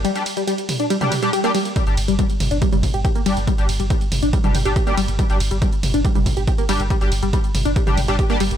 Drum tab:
RD |x-x-x-x-x-x-x-x-|x-x-x-x-x-x-x-x-|x-x-x-x-x-x-x-x-|x-x-x-x-x-x-x-x-|
HH |xxoxxxoxxxoxxxox|xxoxxxoxxxoxxxox|xxoxxxoxxxoxxxox|xxoxxxoxxxoxxxox|
T2 |------o--oo-----|------o--oo-----|------o--oo-----|------o--oo-----|
BD |----------------|o---o---o-o-o---|o---o---o---o---|o---o---o-o-o---|

RD |x-x-x-x-x-x-x-x-|
HH |xxoxxxoxxxoxxxox|
T2 |------o--oo-----|
BD |o---o---o---o---|